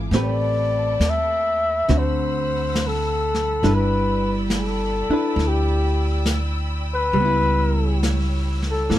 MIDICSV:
0, 0, Header, 1, 7, 480
1, 0, Start_track
1, 0, Key_signature, 1, "major"
1, 0, Tempo, 879765
1, 65, Time_signature, 4, 2, 24, 8
1, 4904, End_track
2, 0, Start_track
2, 0, Title_t, "String section"
2, 0, Program_c, 0, 48
2, 58, Note_on_c, 0, 81, 67
2, 61, Note_on_c, 0, 83, 60
2, 62, Note_on_c, 0, 79, 55
2, 66, Note_on_c, 0, 69, 66
2, 1008, Note_off_c, 0, 81, 0
2, 1011, Note_off_c, 0, 79, 0
2, 1012, Note_off_c, 0, 69, 0
2, 1031, Note_on_c, 0, 88, 77
2, 1037, Note_on_c, 0, 78, 61
2, 1972, Note_off_c, 0, 88, 0
2, 1975, Note_off_c, 0, 78, 0
2, 1987, Note_on_c, 0, 79, 61
2, 1988, Note_on_c, 0, 88, 71
2, 1989, Note_on_c, 0, 74, 65
2, 3885, Note_off_c, 0, 74, 0
2, 3900, Note_on_c, 0, 73, 68
2, 4839, Note_off_c, 0, 83, 0
2, 4846, Note_off_c, 0, 79, 0
2, 4854, Note_off_c, 0, 73, 0
2, 4857, Note_on_c, 0, 74, 68
2, 4860, Note_on_c, 0, 82, 56
2, 4865, Note_on_c, 0, 78, 63
2, 4904, Note_off_c, 0, 74, 0
2, 4904, Note_off_c, 0, 78, 0
2, 4904, Note_off_c, 0, 82, 0
2, 4904, Note_off_c, 0, 88, 0
2, 4904, End_track
3, 0, Start_track
3, 0, Title_t, "Flugelhorn"
3, 0, Program_c, 1, 56
3, 126, Note_on_c, 1, 74, 89
3, 597, Note_on_c, 1, 76, 88
3, 606, Note_off_c, 1, 74, 0
3, 1080, Note_on_c, 1, 72, 79
3, 1088, Note_off_c, 1, 76, 0
3, 1566, Note_on_c, 1, 69, 81
3, 1574, Note_off_c, 1, 72, 0
3, 2041, Note_on_c, 1, 71, 84
3, 2049, Note_off_c, 1, 69, 0
3, 2394, Note_off_c, 1, 71, 0
3, 2508, Note_on_c, 1, 69, 77
3, 2989, Note_on_c, 1, 67, 66
3, 2997, Note_off_c, 1, 69, 0
3, 3442, Note_off_c, 1, 67, 0
3, 3785, Note_on_c, 1, 71, 110
3, 4378, Note_off_c, 1, 71, 0
3, 4750, Note_on_c, 1, 69, 77
3, 4904, Note_off_c, 1, 69, 0
3, 4904, End_track
4, 0, Start_track
4, 0, Title_t, "Hollow-body jazz guitar"
4, 0, Program_c, 2, 26
4, 0, Note_on_c, 2, 52, 44
4, 0, Note_on_c, 2, 62, 47
4, 0, Note_on_c, 2, 65, 43
4, 0, Note_on_c, 2, 68, 47
4, 58, Note_off_c, 2, 52, 0
4, 72, Note_off_c, 2, 62, 0
4, 76, Note_on_c, 2, 60, 49
4, 78, Note_on_c, 2, 57, 46
4, 79, Note_off_c, 2, 65, 0
4, 81, Note_on_c, 2, 67, 49
4, 83, Note_off_c, 2, 68, 0
4, 85, Note_on_c, 2, 71, 55
4, 1025, Note_off_c, 2, 60, 0
4, 1028, Note_off_c, 2, 57, 0
4, 1030, Note_off_c, 2, 67, 0
4, 1032, Note_off_c, 2, 71, 0
4, 1032, Note_on_c, 2, 50, 49
4, 1032, Note_on_c, 2, 60, 48
4, 1035, Note_on_c, 2, 66, 52
4, 1982, Note_off_c, 2, 50, 0
4, 1982, Note_off_c, 2, 60, 0
4, 1984, Note_off_c, 2, 66, 0
4, 1985, Note_on_c, 2, 55, 44
4, 1986, Note_on_c, 2, 62, 46
4, 1988, Note_on_c, 2, 64, 46
4, 1994, Note_on_c, 2, 71, 51
4, 2778, Note_off_c, 2, 62, 0
4, 2781, Note_off_c, 2, 64, 0
4, 2785, Note_on_c, 2, 62, 39
4, 2787, Note_on_c, 2, 64, 38
4, 2794, Note_off_c, 2, 71, 0
4, 2800, Note_on_c, 2, 71, 45
4, 3889, Note_off_c, 2, 55, 0
4, 3896, Note_on_c, 2, 55, 46
4, 3903, Note_off_c, 2, 62, 0
4, 3904, Note_off_c, 2, 64, 0
4, 3911, Note_off_c, 2, 71, 0
4, 3929, Note_on_c, 2, 59, 46
4, 3955, Note_on_c, 2, 64, 50
4, 4853, Note_off_c, 2, 55, 0
4, 4855, Note_on_c, 2, 52, 41
4, 4879, Note_off_c, 2, 59, 0
4, 4888, Note_on_c, 2, 58, 48
4, 4892, Note_off_c, 2, 64, 0
4, 4904, Note_off_c, 2, 52, 0
4, 4904, Note_off_c, 2, 58, 0
4, 4904, End_track
5, 0, Start_track
5, 0, Title_t, "Upright bass"
5, 0, Program_c, 3, 32
5, 61, Note_on_c, 3, 33, 79
5, 520, Note_off_c, 3, 33, 0
5, 542, Note_on_c, 3, 39, 65
5, 999, Note_off_c, 3, 39, 0
5, 1032, Note_on_c, 3, 38, 77
5, 1960, Note_off_c, 3, 38, 0
5, 1979, Note_on_c, 3, 31, 80
5, 2761, Note_off_c, 3, 31, 0
5, 2925, Note_on_c, 3, 38, 80
5, 3871, Note_off_c, 3, 38, 0
5, 3891, Note_on_c, 3, 37, 81
5, 4838, Note_off_c, 3, 37, 0
5, 4856, Note_on_c, 3, 42, 72
5, 4904, Note_off_c, 3, 42, 0
5, 4904, End_track
6, 0, Start_track
6, 0, Title_t, "Muted upright bass strokes"
6, 2777, Note_on_c, 9, 29, 35
6, 2832, Note_off_c, 9, 29, 0
6, 4904, End_track
7, 0, Start_track
7, 0, Title_t, "Drums"
7, 67, Note_on_c, 9, 25, 31
7, 67, Note_on_c, 9, 38, 29
7, 121, Note_off_c, 9, 38, 0
7, 549, Note_on_c, 9, 38, 43
7, 549, Note_on_c, 9, 44, 52
7, 604, Note_off_c, 9, 38, 0
7, 604, Note_off_c, 9, 44, 0
7, 1028, Note_off_c, 9, 25, 0
7, 1028, Note_on_c, 9, 25, 35
7, 1028, Note_on_c, 9, 38, 29
7, 1083, Note_off_c, 9, 38, 0
7, 1502, Note_on_c, 9, 38, 44
7, 1502, Note_on_c, 9, 44, 53
7, 1557, Note_off_c, 9, 38, 0
7, 1557, Note_off_c, 9, 44, 0
7, 1825, Note_on_c, 9, 38, 27
7, 1880, Note_off_c, 9, 38, 0
7, 1982, Note_off_c, 9, 25, 0
7, 1982, Note_on_c, 9, 25, 34
7, 1982, Note_on_c, 9, 38, 28
7, 2037, Note_off_c, 9, 38, 0
7, 2455, Note_on_c, 9, 38, 46
7, 2455, Note_on_c, 9, 44, 56
7, 2510, Note_off_c, 9, 38, 0
7, 2510, Note_off_c, 9, 44, 0
7, 2941, Note_off_c, 9, 25, 0
7, 2941, Note_on_c, 9, 25, 30
7, 2941, Note_on_c, 9, 38, 27
7, 2995, Note_off_c, 9, 38, 0
7, 3413, Note_on_c, 9, 38, 44
7, 3413, Note_on_c, 9, 44, 57
7, 3468, Note_off_c, 9, 38, 0
7, 3468, Note_off_c, 9, 44, 0
7, 3896, Note_off_c, 9, 25, 0
7, 3896, Note_on_c, 9, 25, 39
7, 4381, Note_on_c, 9, 38, 43
7, 4381, Note_on_c, 9, 44, 54
7, 4436, Note_off_c, 9, 38, 0
7, 4436, Note_off_c, 9, 44, 0
7, 4705, Note_on_c, 9, 38, 27
7, 4760, Note_off_c, 9, 38, 0
7, 4860, Note_on_c, 9, 38, 41
7, 4904, Note_off_c, 9, 25, 0
7, 4904, Note_off_c, 9, 38, 0
7, 4904, End_track
0, 0, End_of_file